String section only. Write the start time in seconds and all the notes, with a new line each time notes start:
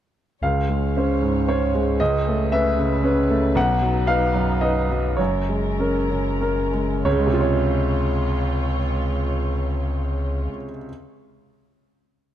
0.43 G#3 C#4 C#5
2.00 A3 B4
3.54 F#3 D#4
5.18 G#3 C#4 A#4
7.04 G#3 F4 C#5